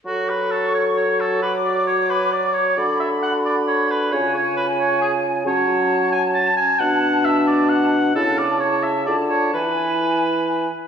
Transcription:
<<
  \new Staff \with { instrumentName = "Flute section" } { \time 3/4 \key fis \minor \tempo 4 = 133 cis'''2. | d'''2. | b''2. | gis''2. |
\key a \major a''2.~ | a''2. | a''4 a''4 a''4 | gis''2~ gis''8 r8 | }
  \new Staff \with { instrumentName = "Oboe" } { \time 3/4 \key fis \minor fis'8 b'8 a'8 cis''8 cis''8 a'8 | b'8 d''8 cis''8 b'8 d''8 cis''8 | d''8 e''8 fis''8 d''8 cis''8 b'8 | cis''8 cis''8 b'8 cis''8 gis'8 r8 |
\key a \major cis''4. gis''8 a''8 gis''8 | fis''4 e''8 d''8 fis''4 | a'8 d''8 cis''8 e''8 d''8 cis''8 | b'2~ b'8 r8 | }
  \new Staff \with { instrumentName = "Clarinet" } { \time 3/4 \key fis \minor a'2. | fis'2.~ | fis'2. | eis'2. |
\key a \major cis'2~ cis'8 r8 | d'2. | e'4 e'4 f'4 | e'2~ e'8 r8 | }
  \new Staff \with { instrumentName = "Bassoon" } { \clef bass \time 3/4 \key fis \minor fis2.~ | fis2. | d2. | cis2. |
\key a \major fis2~ fis8 r8 | b,2. | cis2 d4 | e2~ e8 r8 | }
>>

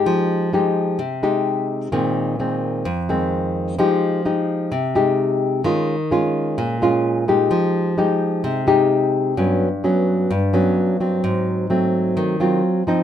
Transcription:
\new Staff \with { instrumentName = "Nylon-string guitar" } { \time 4/4 \key f \minor \tempo 4 = 129 << { <aes ees' g'>4 <aes ees' g'>4 r8 <aes ees' g'>4. | <ees aes c'>4 <ees aes c'>4 r8 <ees aes c'>4. | <aes ees' g'>4 <aes ees' g'>4 r8 <aes ees' g'>4. | <aes des' f'>8 r8 <aes des' f'>4. <aes des' f'>4 <aes ees' g'>8~ |
<aes ees' g'>4 <aes ees' g'>4. <aes ees' g'>4. | <fis b cis'>8 r8 <fis b cis'>4 r8 <fis b cis'>4 <fis c'>8~ | <fis c'>4 <ges a c'>4. <ges c' f'>4 <f c' ees'>8 | } \\ { f2 c2 | bes,2 f,2 | f2 c2 | ees2 bes,2 |
f2 c2 | g,2 g,2 | aes,2 ees4 r4 | } >> }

